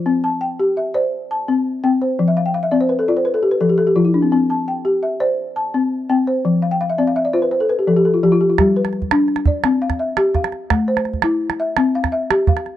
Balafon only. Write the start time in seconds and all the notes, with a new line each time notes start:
Already playing: F4 C5
0.06 C4
0.24 A5
0.41 G5
0.59 G4
0.77 E5
0.94 C5 D5
1.31 A5
1.48 C4
1.84 C4 G5
2.02 C5
2.19 F3
2.28 E5
2.37 F5
2.46 G5
2.54 F5
2.63 E5
2.71 C4 D5
2.81 C5
2.89 B4
2.99 A4
3.08 F4 D5
3.17 C5
3.25 B4
3.34 A4
3.43 G4
3.51 B4
3.61 F3 A4
3.69 G4
3.78 A4
3.87 G4
3.96 F3 F4
4.05 E4
4.14 D4
4.22 C4
4.32 C4
4.50 A5
4.68 G5
4.85 G4
5.03 E5
5.20 C5 D5
5.56 A5
5.74 C4
6.09 C4 G5
6.27 C5
6.45 F3
6.62 F5
6.71 G5
6.81 F5
6.90 E5
6.98 C4 D5
7.07 F5
7.16 E5
7.25 D5
7.33 F4 C5
7.42 B4
7.51 C5
7.60 A4
7.69 B4
7.79 G4
7.87 F3 A4
7.97 G4
8.05 A4
8.14 F4
8.23 F3 G4
8.32 F4
8.41 G4
8.50 F4
8.59 G3 G4
8.76 B4
9.12 D4
9.47 D5
9.64 C4
9.82 F5
9.99 E5
10.17 G4
10.35 F5
10.70 A3
10.88 C5
11.24 E4
11.60 E5
11.77 C4
11.95 F5
12.12 E5
12.30 G4
12.48 F5